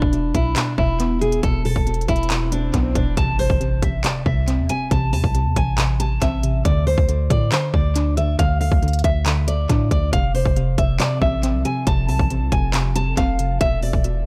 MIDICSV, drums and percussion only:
0, 0, Header, 1, 2, 480
1, 0, Start_track
1, 0, Key_signature, 0, "minor"
1, 0, Tempo, 434783
1, 1582, Time_signature, 4, 2, 24, 8
1, 15743, End_track
2, 0, Start_track
2, 0, Title_t, "Drums"
2, 21, Note_on_c, 9, 36, 93
2, 132, Note_off_c, 9, 36, 0
2, 142, Note_on_c, 9, 42, 57
2, 252, Note_off_c, 9, 42, 0
2, 382, Note_on_c, 9, 36, 89
2, 382, Note_on_c, 9, 42, 75
2, 492, Note_off_c, 9, 36, 0
2, 492, Note_off_c, 9, 42, 0
2, 621, Note_on_c, 9, 42, 80
2, 622, Note_on_c, 9, 39, 113
2, 732, Note_off_c, 9, 39, 0
2, 732, Note_off_c, 9, 42, 0
2, 861, Note_on_c, 9, 36, 93
2, 972, Note_off_c, 9, 36, 0
2, 1101, Note_on_c, 9, 42, 88
2, 1211, Note_off_c, 9, 42, 0
2, 1342, Note_on_c, 9, 42, 60
2, 1452, Note_off_c, 9, 42, 0
2, 1461, Note_on_c, 9, 42, 60
2, 1571, Note_off_c, 9, 42, 0
2, 1581, Note_on_c, 9, 36, 116
2, 1581, Note_on_c, 9, 42, 85
2, 1691, Note_off_c, 9, 42, 0
2, 1692, Note_off_c, 9, 36, 0
2, 1822, Note_on_c, 9, 46, 84
2, 1932, Note_off_c, 9, 46, 0
2, 1941, Note_on_c, 9, 36, 89
2, 2052, Note_off_c, 9, 36, 0
2, 2062, Note_on_c, 9, 42, 49
2, 2142, Note_off_c, 9, 42, 0
2, 2142, Note_on_c, 9, 42, 48
2, 2222, Note_off_c, 9, 42, 0
2, 2222, Note_on_c, 9, 42, 49
2, 2301, Note_off_c, 9, 42, 0
2, 2301, Note_on_c, 9, 36, 89
2, 2301, Note_on_c, 9, 42, 49
2, 2382, Note_off_c, 9, 42, 0
2, 2382, Note_on_c, 9, 42, 49
2, 2412, Note_off_c, 9, 36, 0
2, 2463, Note_off_c, 9, 42, 0
2, 2463, Note_on_c, 9, 42, 48
2, 2541, Note_off_c, 9, 42, 0
2, 2541, Note_on_c, 9, 42, 80
2, 2542, Note_on_c, 9, 39, 114
2, 2652, Note_off_c, 9, 39, 0
2, 2652, Note_off_c, 9, 42, 0
2, 2782, Note_on_c, 9, 42, 82
2, 2893, Note_off_c, 9, 42, 0
2, 3021, Note_on_c, 9, 42, 90
2, 3022, Note_on_c, 9, 36, 87
2, 3132, Note_off_c, 9, 42, 0
2, 3133, Note_off_c, 9, 36, 0
2, 3261, Note_on_c, 9, 36, 92
2, 3261, Note_on_c, 9, 42, 72
2, 3371, Note_off_c, 9, 36, 0
2, 3371, Note_off_c, 9, 42, 0
2, 3502, Note_on_c, 9, 36, 120
2, 3502, Note_on_c, 9, 42, 86
2, 3612, Note_off_c, 9, 36, 0
2, 3612, Note_off_c, 9, 42, 0
2, 3742, Note_on_c, 9, 46, 83
2, 3852, Note_off_c, 9, 46, 0
2, 3862, Note_on_c, 9, 36, 97
2, 3972, Note_off_c, 9, 36, 0
2, 3984, Note_on_c, 9, 42, 59
2, 4094, Note_off_c, 9, 42, 0
2, 4222, Note_on_c, 9, 36, 92
2, 4223, Note_on_c, 9, 42, 74
2, 4333, Note_off_c, 9, 36, 0
2, 4333, Note_off_c, 9, 42, 0
2, 4463, Note_on_c, 9, 39, 114
2, 4463, Note_on_c, 9, 42, 81
2, 4573, Note_off_c, 9, 42, 0
2, 4574, Note_off_c, 9, 39, 0
2, 4702, Note_on_c, 9, 36, 95
2, 4812, Note_off_c, 9, 36, 0
2, 4942, Note_on_c, 9, 42, 93
2, 5052, Note_off_c, 9, 42, 0
2, 5182, Note_on_c, 9, 42, 76
2, 5292, Note_off_c, 9, 42, 0
2, 5423, Note_on_c, 9, 36, 115
2, 5423, Note_on_c, 9, 42, 83
2, 5533, Note_off_c, 9, 36, 0
2, 5533, Note_off_c, 9, 42, 0
2, 5662, Note_on_c, 9, 46, 84
2, 5773, Note_off_c, 9, 46, 0
2, 5782, Note_on_c, 9, 36, 93
2, 5892, Note_off_c, 9, 36, 0
2, 5902, Note_on_c, 9, 42, 59
2, 6013, Note_off_c, 9, 42, 0
2, 6142, Note_on_c, 9, 36, 88
2, 6142, Note_on_c, 9, 42, 74
2, 6253, Note_off_c, 9, 36, 0
2, 6253, Note_off_c, 9, 42, 0
2, 6382, Note_on_c, 9, 42, 84
2, 6383, Note_on_c, 9, 39, 116
2, 6493, Note_off_c, 9, 39, 0
2, 6493, Note_off_c, 9, 42, 0
2, 6623, Note_on_c, 9, 42, 88
2, 6733, Note_off_c, 9, 42, 0
2, 6862, Note_on_c, 9, 42, 88
2, 6863, Note_on_c, 9, 36, 87
2, 6973, Note_off_c, 9, 36, 0
2, 6973, Note_off_c, 9, 42, 0
2, 7103, Note_on_c, 9, 42, 73
2, 7213, Note_off_c, 9, 42, 0
2, 7342, Note_on_c, 9, 36, 119
2, 7343, Note_on_c, 9, 42, 85
2, 7453, Note_off_c, 9, 36, 0
2, 7453, Note_off_c, 9, 42, 0
2, 7583, Note_on_c, 9, 46, 84
2, 7694, Note_off_c, 9, 46, 0
2, 7702, Note_on_c, 9, 36, 98
2, 7813, Note_off_c, 9, 36, 0
2, 7823, Note_on_c, 9, 42, 57
2, 7933, Note_off_c, 9, 42, 0
2, 8062, Note_on_c, 9, 36, 90
2, 8064, Note_on_c, 9, 42, 74
2, 8173, Note_off_c, 9, 36, 0
2, 8174, Note_off_c, 9, 42, 0
2, 8303, Note_on_c, 9, 39, 118
2, 8303, Note_on_c, 9, 42, 81
2, 8413, Note_off_c, 9, 42, 0
2, 8414, Note_off_c, 9, 39, 0
2, 8542, Note_on_c, 9, 36, 97
2, 8652, Note_off_c, 9, 36, 0
2, 8783, Note_on_c, 9, 42, 93
2, 8893, Note_off_c, 9, 42, 0
2, 9023, Note_on_c, 9, 42, 75
2, 9133, Note_off_c, 9, 42, 0
2, 9262, Note_on_c, 9, 36, 114
2, 9263, Note_on_c, 9, 42, 86
2, 9373, Note_off_c, 9, 36, 0
2, 9373, Note_off_c, 9, 42, 0
2, 9503, Note_on_c, 9, 46, 87
2, 9614, Note_off_c, 9, 46, 0
2, 9622, Note_on_c, 9, 36, 97
2, 9733, Note_off_c, 9, 36, 0
2, 9743, Note_on_c, 9, 42, 36
2, 9802, Note_off_c, 9, 42, 0
2, 9802, Note_on_c, 9, 42, 43
2, 9863, Note_off_c, 9, 42, 0
2, 9863, Note_on_c, 9, 42, 54
2, 9923, Note_off_c, 9, 42, 0
2, 9923, Note_on_c, 9, 42, 64
2, 9981, Note_off_c, 9, 42, 0
2, 9981, Note_on_c, 9, 42, 74
2, 9982, Note_on_c, 9, 36, 88
2, 10092, Note_off_c, 9, 36, 0
2, 10092, Note_off_c, 9, 42, 0
2, 10223, Note_on_c, 9, 42, 83
2, 10224, Note_on_c, 9, 39, 117
2, 10334, Note_off_c, 9, 39, 0
2, 10334, Note_off_c, 9, 42, 0
2, 10464, Note_on_c, 9, 42, 86
2, 10574, Note_off_c, 9, 42, 0
2, 10703, Note_on_c, 9, 36, 88
2, 10703, Note_on_c, 9, 42, 91
2, 10813, Note_off_c, 9, 36, 0
2, 10814, Note_off_c, 9, 42, 0
2, 10942, Note_on_c, 9, 36, 95
2, 10943, Note_on_c, 9, 42, 75
2, 11052, Note_off_c, 9, 36, 0
2, 11053, Note_off_c, 9, 42, 0
2, 11183, Note_on_c, 9, 36, 115
2, 11183, Note_on_c, 9, 42, 89
2, 11293, Note_off_c, 9, 36, 0
2, 11293, Note_off_c, 9, 42, 0
2, 11423, Note_on_c, 9, 46, 86
2, 11533, Note_off_c, 9, 46, 0
2, 11542, Note_on_c, 9, 36, 94
2, 11652, Note_off_c, 9, 36, 0
2, 11663, Note_on_c, 9, 42, 56
2, 11773, Note_off_c, 9, 42, 0
2, 11902, Note_on_c, 9, 36, 91
2, 11902, Note_on_c, 9, 42, 73
2, 12012, Note_off_c, 9, 36, 0
2, 12012, Note_off_c, 9, 42, 0
2, 12142, Note_on_c, 9, 42, 82
2, 12143, Note_on_c, 9, 39, 117
2, 12253, Note_off_c, 9, 39, 0
2, 12253, Note_off_c, 9, 42, 0
2, 12382, Note_on_c, 9, 36, 97
2, 12492, Note_off_c, 9, 36, 0
2, 12622, Note_on_c, 9, 42, 91
2, 12732, Note_off_c, 9, 42, 0
2, 12862, Note_on_c, 9, 42, 72
2, 12972, Note_off_c, 9, 42, 0
2, 13102, Note_on_c, 9, 36, 118
2, 13102, Note_on_c, 9, 42, 86
2, 13212, Note_off_c, 9, 42, 0
2, 13213, Note_off_c, 9, 36, 0
2, 13342, Note_on_c, 9, 46, 83
2, 13453, Note_off_c, 9, 46, 0
2, 13462, Note_on_c, 9, 36, 96
2, 13572, Note_off_c, 9, 36, 0
2, 13583, Note_on_c, 9, 42, 58
2, 13694, Note_off_c, 9, 42, 0
2, 13822, Note_on_c, 9, 36, 88
2, 13822, Note_on_c, 9, 42, 75
2, 13932, Note_off_c, 9, 36, 0
2, 13932, Note_off_c, 9, 42, 0
2, 14062, Note_on_c, 9, 39, 120
2, 14062, Note_on_c, 9, 42, 84
2, 14172, Note_off_c, 9, 42, 0
2, 14173, Note_off_c, 9, 39, 0
2, 14303, Note_on_c, 9, 42, 88
2, 14413, Note_off_c, 9, 42, 0
2, 14542, Note_on_c, 9, 42, 94
2, 14543, Note_on_c, 9, 36, 88
2, 14653, Note_off_c, 9, 36, 0
2, 14653, Note_off_c, 9, 42, 0
2, 14782, Note_on_c, 9, 42, 74
2, 14893, Note_off_c, 9, 42, 0
2, 15022, Note_on_c, 9, 42, 90
2, 15023, Note_on_c, 9, 36, 120
2, 15133, Note_off_c, 9, 36, 0
2, 15133, Note_off_c, 9, 42, 0
2, 15262, Note_on_c, 9, 46, 83
2, 15373, Note_off_c, 9, 46, 0
2, 15382, Note_on_c, 9, 36, 95
2, 15492, Note_off_c, 9, 36, 0
2, 15503, Note_on_c, 9, 42, 58
2, 15613, Note_off_c, 9, 42, 0
2, 15743, End_track
0, 0, End_of_file